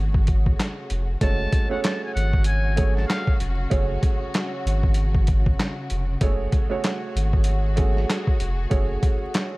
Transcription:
Already playing: G#1 C#3 A3 C#4 F#4 G#4 C#5
0.14 kick
0.27 kick, closed hi-hat
0.46 kick
0.60 snare, clap, closed hi-hat
0.90 F1, closed hi-hat
1.21 F#1 C#3 F#3 G#3 A3 C#4 F#4 C#5 A5, kick, closed hi-hat
1.53 kick, closed hi-hat
1.69 A3 C#4 F#4 G#4 C#5 F#5
1.83 A5, snare, clap, closed hi-hat
2.05 G#5
2.14 G#1 F#5, closed hi-hat
2.33 kick
2.44 G#5, closed hi-hat
2.76 A3 C#4 F#4 G#4 C#5, kick, closed hi-hat
2.96 A5, snare
3.07 F5, snare, clap, closed hi-hat
3.27 kick
3.40 F1, closed hi-hat
3.70 F#1 A3 C#4 F#4 G#4 C#5, kick, closed hi-hat
4.03 kick, closed hi-hat
4.34 snare, clap, closed hi-hat
4.66 G#1, closed hi-hat
4.83 kick
4.94 closed hi-hat
5.15 kick
5.27 kick, closed hi-hat
5.46 kick
5.60 snare, clap, closed hi-hat
5.90 F1, closed hi-hat
6.21 F#1 A3 C#4 F#4 G#4 C#5, kick, closed hi-hat
6.52 kick, closed hi-hat
6.70 A3 C#4 F#4 G#4 C#5
6.84 snare, clap, closed hi-hat
7.16 G#1, closed hi-hat
7.33 kick
7.44 closed hi-hat
7.76 A3 C#4 F#4 G#4 C#5, kick, closed hi-hat
7.97 snare
8.10 snare, clap, closed hi-hat
8.27 kick
8.40 F1, closed hi-hat
8.70 F#1 A3 C#4 F#4 G#4 C#5, kick, closed hi-hat
9.03 kick, closed hi-hat
9.34 snare, clap, closed hi-hat

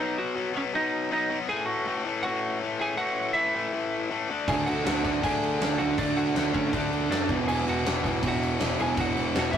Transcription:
Already playing: B2 F#3
0.00 B3 D#4 D#5
0.18 F#4 F#5
0.35 B2 F#3 B3
0.54 B2 F#3 B3 C#4 C#5
0.73 B2 F#3 B3 D#4 D#5
1.11 B2 F#3 B3 D#4 D#5
1.30 B2 F#3 B3
1.48 A2 E3 A3 G#4 G#5
1.66 F#4 F#5
1.86 A2 E3 A3
2.05 A2 E3 A3
2.23 A2 E3 F#4 F#5
2.27 A3
2.62 A2 E3 A3
2.79 A2 E3 A3 G#4 G#5
2.96 A2 E3 A3 F#4 F#5
3.33 A2 E3 A3 E4 E5
3.54 A2 E3 A3
3.73 A2 E3 A3
4.11 A2 E3 A3
4.29 D3 A3 D4
4.48 D2 D3 A3 D4 G#4 G#5, kick, crash
4.66 D2 F#4 F#5, crash
4.84 D2 D3 A3 D4 F#4 F#5, snare, crash
5.04 D2 D3 A3 D4, kick, crash
5.23 D2 D3 A3 D4 G#4 G#5, kick, crash
5.43 crash
5.60 D2 D3 A3 D4, snare, crash
5.78 D2 D3 A3 D4 F#4 F#5, crash
5.98 D2 D3 A3 D4 D5, kick, crash
6.16 D2 F#4 F#5, crash
6.35 D2 D3 A3 D4, snare, crash
6.53 D2 D3 A3 C#4 D4 C#5, kick, crash
6.73 D2 D3 A3 D4 D5, kick, crash
6.92 crash
7.10 F#2 D3 A3 D4 D5, snare, crash
7.29 E1 E2 B2 E3, kick, crash
7.47 E1 E2 B2 E3 G#4 G#5, crash
7.66 E1 F#4 F#5, crash
7.86 E1 E2 B2 E3, snare, crash
8.04 E1 E2 B2 E3, kick, crash
8.22 E1 E2 B2 E3, kick, crash
8.27 F#4 F#5
8.43 crash
8.59 E1 E2 B2 E3, snare, crash
8.79 E1 E2 B2 E3 G#4 G#5, crash
8.97 E1 E2 B2 E3 F#4 F#5, kick, crash
9.16 E1, crash
9.35 E1 E2 B2 E3 F#4, snare, crash
9.39 F#5
9.51 E1 E2 B2 E4 E5, kick, crash

